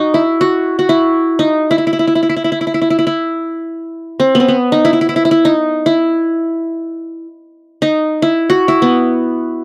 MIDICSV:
0, 0, Header, 1, 2, 480
1, 0, Start_track
1, 0, Tempo, 500000
1, 9258, End_track
2, 0, Start_track
2, 0, Title_t, "Qanun"
2, 0, Program_c, 0, 107
2, 0, Note_on_c, 0, 63, 62
2, 0, Note_on_c, 0, 66, 76
2, 135, Note_on_c, 0, 64, 64
2, 193, Note_off_c, 0, 63, 0
2, 388, Note_off_c, 0, 66, 0
2, 392, Note_on_c, 0, 66, 74
2, 752, Note_off_c, 0, 66, 0
2, 756, Note_on_c, 0, 66, 55
2, 851, Note_off_c, 0, 64, 0
2, 855, Note_on_c, 0, 64, 61
2, 1335, Note_on_c, 0, 63, 64
2, 1392, Note_off_c, 0, 64, 0
2, 1639, Note_on_c, 0, 64, 68
2, 1696, Note_off_c, 0, 63, 0
2, 1706, Note_off_c, 0, 64, 0
2, 1709, Note_on_c, 0, 64, 40
2, 1789, Note_off_c, 0, 64, 0
2, 1793, Note_on_c, 0, 64, 46
2, 1847, Note_off_c, 0, 64, 0
2, 1851, Note_on_c, 0, 64, 45
2, 1909, Note_off_c, 0, 64, 0
2, 1913, Note_on_c, 0, 64, 45
2, 1988, Note_off_c, 0, 64, 0
2, 1991, Note_on_c, 0, 64, 43
2, 2004, Note_off_c, 0, 66, 0
2, 2064, Note_off_c, 0, 64, 0
2, 2068, Note_on_c, 0, 64, 43
2, 2134, Note_off_c, 0, 64, 0
2, 2138, Note_on_c, 0, 64, 37
2, 2199, Note_off_c, 0, 64, 0
2, 2203, Note_on_c, 0, 64, 40
2, 2267, Note_off_c, 0, 64, 0
2, 2270, Note_on_c, 0, 64, 34
2, 2342, Note_off_c, 0, 64, 0
2, 2346, Note_on_c, 0, 64, 41
2, 2414, Note_off_c, 0, 64, 0
2, 2418, Note_on_c, 0, 64, 39
2, 2501, Note_off_c, 0, 64, 0
2, 2505, Note_on_c, 0, 64, 36
2, 2558, Note_off_c, 0, 64, 0
2, 2562, Note_on_c, 0, 64, 36
2, 2629, Note_off_c, 0, 64, 0
2, 2633, Note_on_c, 0, 64, 41
2, 2699, Note_off_c, 0, 64, 0
2, 2703, Note_on_c, 0, 64, 41
2, 2784, Note_off_c, 0, 64, 0
2, 2788, Note_on_c, 0, 64, 46
2, 2863, Note_off_c, 0, 64, 0
2, 2867, Note_on_c, 0, 64, 46
2, 2940, Note_off_c, 0, 64, 0
2, 2944, Note_on_c, 0, 64, 53
2, 4028, Note_on_c, 0, 60, 66
2, 4175, Note_on_c, 0, 59, 65
2, 4220, Note_off_c, 0, 60, 0
2, 4224, Note_on_c, 0, 60, 56
2, 4281, Note_off_c, 0, 59, 0
2, 4281, Note_off_c, 0, 64, 0
2, 4304, Note_on_c, 0, 59, 60
2, 4362, Note_off_c, 0, 60, 0
2, 4532, Note_on_c, 0, 63, 70
2, 4653, Note_on_c, 0, 64, 79
2, 4710, Note_off_c, 0, 63, 0
2, 4728, Note_off_c, 0, 64, 0
2, 4732, Note_on_c, 0, 64, 54
2, 4807, Note_off_c, 0, 64, 0
2, 4811, Note_on_c, 0, 64, 65
2, 4882, Note_off_c, 0, 64, 0
2, 4885, Note_on_c, 0, 64, 56
2, 4949, Note_off_c, 0, 64, 0
2, 4953, Note_on_c, 0, 64, 66
2, 5037, Note_off_c, 0, 64, 0
2, 5040, Note_on_c, 0, 64, 58
2, 5095, Note_off_c, 0, 64, 0
2, 5099, Note_on_c, 0, 64, 68
2, 5231, Note_on_c, 0, 63, 79
2, 5289, Note_off_c, 0, 64, 0
2, 5626, Note_on_c, 0, 64, 61
2, 5683, Note_off_c, 0, 63, 0
2, 5894, Note_off_c, 0, 59, 0
2, 6963, Note_off_c, 0, 64, 0
2, 7506, Note_on_c, 0, 63, 70
2, 7895, Note_on_c, 0, 64, 70
2, 7952, Note_off_c, 0, 63, 0
2, 8156, Note_on_c, 0, 66, 82
2, 8330, Note_off_c, 0, 64, 0
2, 8334, Note_on_c, 0, 64, 76
2, 8466, Note_on_c, 0, 59, 66
2, 9258, Note_off_c, 0, 59, 0
2, 9258, Note_off_c, 0, 64, 0
2, 9258, Note_off_c, 0, 66, 0
2, 9258, End_track
0, 0, End_of_file